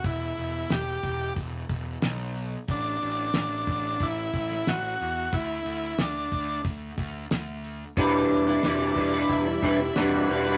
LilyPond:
<<
  \new Staff \with { instrumentName = "String machine" } { \time 4/4 \key e \minor \tempo 4 = 91 r1 | r1 | r1 | <g d'' e'' b''>1 | }
  \new Staff \with { instrumentName = "Transistor combo organ" } { \time 4/4 \key e \minor e'4 g'4 r2 | d'2 e'4 fis'4 | e'4 d'4 r2 | d'2 e'4 fis'4 | }
  \new Staff \with { instrumentName = "Clean electric guitar" } { \time 4/4 \key e \minor r1 | r1 | r1 | <e g d' e' b'>8. <d' e' b'>16 <e g d' e' b'>8 <g d' e' b'>16 <d' e' b'>8. <g d' e' b'>8 <e g d' e' b'>8 <g d' e' b'>16 <d' e' b'>16 | }
  \new Staff \with { instrumentName = "Picked electric bass" } { \clef bass \time 4/4 \key e \minor e,,8 e,,8 e,,8 e,,8 e,,8 e,,8 b,,4 | a,,8 a,,8 a,,8 a,,8 a,,8 a,,8 a,,8 e,8 | d,8 d,8 d,8 d,8 d,8 d,8 d,4 | e,,8 e,,8 e,,8 e,,8 e,,8 e,,8 e,,8 e,,8 | }
  \new DrumStaff \with { instrumentName = "Drums" } \drummode { \time 4/4 <hho bd>8 hho8 <hho sn>8 <hho bd>8 <hho bd>8 <hho bd>8 <hho sn>8 hho8 | <hho bd>8 hho8 <hho sn>8 <hho bd>8 <hho bd>8 <hho bd>16 sn16 <hho sn>8 hho8 | <hho bd>8 hho8 <hho sn>8 <hho bd>8 <hho bd>8 <hho bd>8 <hho sn>8 hho8 | <hho bd>8 hho8 <hho sn>8 <hho bd>8 <hho bd>8 <hho bd>8 <hho sn>8 hho8 | }
>>